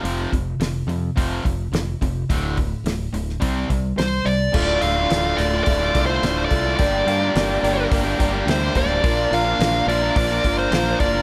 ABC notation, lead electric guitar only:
X:1
M:4/4
L:1/16
Q:1/4=107
K:Dm
V:1 name="Lead electric guitar"
z16 | z12 c2 d2- | d2 f4 d2 d3 c3 d2 | d8 z4 c2 d2- |
d2 f4 d2 d3 c3 d2 |]